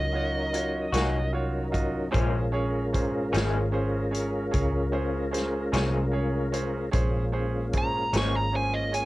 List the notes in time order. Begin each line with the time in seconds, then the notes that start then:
Already playing: C#2 F#3 C#4 D#4 A#4 D#5
0.13 F4 F#4 C#5
0.53 F4 F#4 C#5, closed hi-hat
0.93 C2 D#3 A#3 C#4 F4 F#4 C#5, snare, closed hi-hat
1.33 F4 F#4 C#5
1.72 F4 F#4 D#5, kick, closed hi-hat
2.11 A#1 A#2 F3 G#3 C#4 F4 G#4 A#4 C5, kick, closed hi-hat
2.15 C#4
2.52 C#4 G#4 C#5
2.93 C#4 G#4 C5, kick, closed hi-hat
3.32 G#1 A#2 F3 G#3 C#4 G#4 C5, closed hi-hat
3.37 snare
3.72 C#4 G#4 C5
4.11 C#4 G#4 C#5, closed hi-hat
4.51 C#2 C#4 G#4 C#5, kick, closed hi-hat
4.92 C#4 G#4 C5
5.31 C#4 G#4 C5, closed hi-hat
5.37 snare
5.72 C2 A#2 F3 G#3 C#4 G#4 C5, closed hi-hat
5.76 snare
6.12 C#4 G#4 C#5
6.52 C#4 G#4 C5, closed hi-hat
6.91 A#1 G#3 A#3 C#4 F4 G#4 C5, kick, closed hi-hat
7.32 C#4 G#4 C5
7.73 C#4 G#4 C5, kick, closed hi-hat
7.78 A#5
8.13 G#1 A#2 F3 G#3 C#4 G#4 C5, snare, closed hi-hat
8.18 C#6
8.36 A#5
8.52 C#4 G#4 C5
8.56 G#5
8.74 D#5
8.92 C#4 G#4 C#5 G#5, closed hi-hat